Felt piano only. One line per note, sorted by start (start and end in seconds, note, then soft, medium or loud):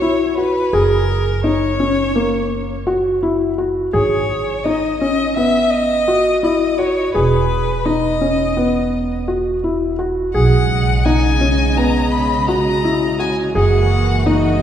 0.02 0.29 E4 medium
0.38 0.65 F#4 medium
0.73 1.29 G#4 medium
1.44 1.72 D#4 medium
1.80 2.08 C#4 medium
2.16 2.71 A#3 medium
2.87 3.15 F#4 medium
3.23 3.50 E4 medium
3.58 3.86 F#4 medium
3.93 4.49 G#4 medium
4.65 4.93 D#4 medium
5.01 5.29 C#4 medium
5.37 5.92 B3 medium
6.08 6.36 F#4 medium
6.43 6.71 E4 medium
6.79 7.07 F#4 medium
7.15 7.70 G#4 medium
7.86 8.14 D#4 medium
8.21 8.49 C#4 medium
8.57 9.13 B3 medium
9.28 9.56 F#4 medium
9.64 9.92 E4 medium
9.99 10.27 F#4 medium
10.34 10.90 G#4 medium
11.06 11.34 D#4 medium
11.41 11.69 C#4 medium
11.77 12.33 B3 medium
12.48 12.76 F#4 medium
12.84 13.12 E4 medium
13.19 13.47 F#4 medium
13.55 14.11 G#4 medium
14.26 14.54 D#4 medium